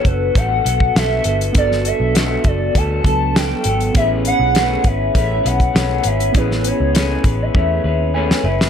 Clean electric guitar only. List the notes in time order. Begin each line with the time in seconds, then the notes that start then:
0.05 B3 F#4 A4
0.35 G3 B3 F#4 A4
0.65 B3 F#4 A4
0.95 G3 B3 F#4 A4
1.24 B3 F#4 A4
1.54 G3 B3 F#4 A4
1.85 B3 F#4 A4
2.14 G3 B3 F#4 A4
2.45 B3 F#4 A4
2.75 G3 B3 F#4 A4
3.05 B3 F#4 A4
3.35 G3 B3 A4
3.65 B3 F#4 A4
3.95 A3 C#4 G#4 B4
4.24 C#4 G#4 B4
4.55 A3 C#4 G#4 B4
4.84 C#4 G#4 B4
5.14 A3 C#4 G#4 B4
5.43 C#4 G#4 B4
5.74 A3 C#4 G#4 B4
6.04 C#4 G#4 B4
6.34 A3 C#4 G#4 B4
6.64 C#4 G#4 B4
6.94 A3 C#4 G#4 B4
7.24 C#4 G#4 B4
7.54 A3 C#4 G#4 B4
7.84 C#4 G#4 B4
8.14 A3 C#4 G#4 B4
8.45 C#4 G#4 B4